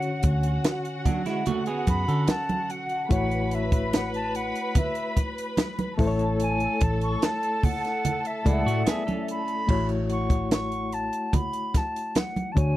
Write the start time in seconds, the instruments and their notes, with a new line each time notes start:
Already playing: reed electric piano D3 C#4 F#4 C#5, string section F#4 F#5, flute F#5
0.02 closed hi-hat
0.23 fingered electric bass D2, vibraphone G#5, kick, closed hi-hat
0.43 closed hi-hat
0.64 snare, closed hi-hat, high conga
0.85 closed hi-hat
1.05 clean electric guitar F#3 D4, kick, closed hi-hat, low conga
1.26 clean electric guitar G#3 E4, snare, closed hi-hat
1.46 clean electric guitar A3 F#4, closed hi-hat, muted conga, low conga
1.66 clean electric guitar B3 G#4, closed hi-hat
1.87 fingered electric bass F#2, flute B5, kick, closed hi-hat, muted conga
2.08 fingered electric bass D3, clean electric guitar C#4 A4, closed hi-hat
2.28 flute A5, snare, closed hi-hat, high conga
2.49 closed hi-hat, high conga
2.70 vibraphone F#5, flute F#5, closed hi-hat
2.89 closed hi-hat
2.96 vibraphone A5
3.09 fingered electric bass A1, reed electric piano A3 E4 F#4 C#5, string section B4 B5, flute F#5, kick, closed hi-hat, muted conga
3.21 vibraphone B5
3.31 closed hi-hat
3.51 flute E5, closed hi-hat
3.72 kick, closed hi-hat
3.93 flute F#5, snare, closed hi-hat, high conga
4.14 flute A5, closed hi-hat
4.35 flute F#5, closed hi-hat
4.55 closed hi-hat
4.75 flute E5, kick, closed hi-hat, muted conga, low conga
4.95 closed hi-hat
5.17 kick, closed hi-hat, muted conga
5.38 closed hi-hat
5.57 snare, closed hi-hat, high conga
5.79 closed hi-hat, high conga
5.98 fingered electric bass A1, reed electric piano A3 E4 A4 C5, string section A4 A5, kick, open hi-hat
6.07 reed electric piano C#5
6.19 closed hi-hat
6.40 flute G#5, closed hi-hat
6.60 closed hi-hat
6.81 fingered electric bass A1, flute A5, kick, closed hi-hat
7.01 flute C#6, closed hi-hat
7.22 flute A5, snare, closed hi-hat, high conga
7.43 closed hi-hat
7.63 flute F#5, kick, open hi-hat, low conga
7.85 snare, closed hi-hat
8.05 closed hi-hat, muted conga, low conga
8.25 flute E5, closed hi-hat
8.45 fingered electric bass C#2, clean electric guitar G#3 E4, reed electric piano A3 E4 A4 D5, vibraphone E5, flute F#5, kick, closed hi-hat, muted conga
8.53 reed electric piano E5
8.66 fingered electric bass A2, clean electric guitar A3 F#4, closed hi-hat
8.86 clean electric guitar B3 G#4, flute E5, snare, closed hi-hat, high conga
9.07 clean electric guitar C#4 A4, closed hi-hat, high conga
9.28 flute B5, closed hi-hat
9.48 closed hi-hat
9.67 fingered electric bass A1, reed electric piano A3 E4 F#4 C#5, kick, crash
9.89 closed hi-hat
10.10 vibraphone F#5, flute C#6, closed hi-hat
10.30 kick, closed hi-hat
10.51 flute C#6, snare, closed hi-hat, high conga
10.72 closed hi-hat
10.92 flute A5, closed hi-hat
11.13 closed hi-hat
11.33 flute B5, kick, closed hi-hat, muted conga, low conga
11.53 closed hi-hat
11.74 flute A5, kick, snare, closed hi-hat, muted conga
11.96 closed hi-hat
12.15 flute F#5, snare, closed hi-hat, high conga
12.36 closed hi-hat, high conga
12.52 reed electric piano D3 D4, flute A5
12.57 fingered electric bass D2, reed electric piano F#4 C#5, flute G#5, kick, closed hi-hat